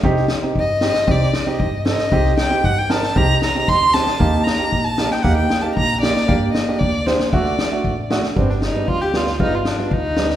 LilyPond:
<<
  \new Staff \with { instrumentName = "Violin" } { \time 2/4 \tempo 4 = 115 r4 ees''4 | d''8 ees''4 ees''8~ | ees''8 g''8 fis''16 g''16 a''8 | bes''8 bes''8 c'''8 a''8~ |
a''8 bes''8. a''8 g''16 | fis''16 g''8 a''16 bes''8 d''8~ | d''8 ees''8 d''8 c''8 | d''4. r8 |
c'16 d'16 ees'8 f'16 g'16 f'8 | ees'16 f'16 d'8 ees'4 | }
  \new Staff \with { instrumentName = "Upright piano" } { \time 2/4 <c' ees' g'>8 r16 <c' ees' g'>16 r8 <c' ees' g'>16 r16 | <c' ees' g'>8 r16 <c' ees' g'>16 r8 <c' ees' a'>16 r16 | <c' ees' g'>8 r16 <c' ees' g'>16 r8 <c' ees' bes'>16 r16 | <c' ees' g'>8 r16 <c' ees' g'>16 r8 <c' ees' g'>16 r16 |
<bes ees' g'>8 r16 <bes ees' g'>16 r8 <bes ees' g'>16 r16 | <bes ees' g'>8 r16 <bes ees' g'>16 r8 <bes ees' g'>16 r16 | <bes d' g'>8 r16 <bes d' g'>16 r8 <bes d' g'>16 r16 | <a d' fis'>8 r16 <a d' fis'>16 r8 <a d' fis'>16 r16 |
<g b d'>8 r16 <g b d'>16 r8 <g b d'>16 r16 | <g b f'>8 r16 <g b f'>16 r8 <g b d'>16 r16 | }
  \new Staff \with { instrumentName = "Upright bass" } { \clef bass \time 2/4 c,8 r8 g,4 | c,8 r8 g,4 | c,8 r8 g,4 | c,8 r8 d,4 |
ees,8 r8 bes,,4 | ees,8 r8 bes,,4 | g,8 r8 d,4 | d,8 r8 a,,4 |
g,,4 d,4 | g,,4 d,4 | }
  \new DrumStaff \with { instrumentName = "Drums" } \drummode { \time 2/4 bd16 sn16 sn8 bd8 sn16 sn16 | bd8 sn16 sn16 bd8 sn16 sn16 | bd16 sn16 sn16 sn16 bd8 sn16 sn16 | bd16 sn16 sn16 sn16 <bd sn>8 sn16 sn16 |
bd8 sn8 bd8 sn16 sn16 | bd8 sn8 bd16 sn16 sn16 sn16 | bd8 sn8 bd8 sn16 sn16 | bd16 sn16 sn8 bd8 sn16 sn16 |
bd16 sn16 sn8 bd16 sn16 sn16 sn16 | bd8 sn16 sn16 bd8 sn16 sn16 | }
>>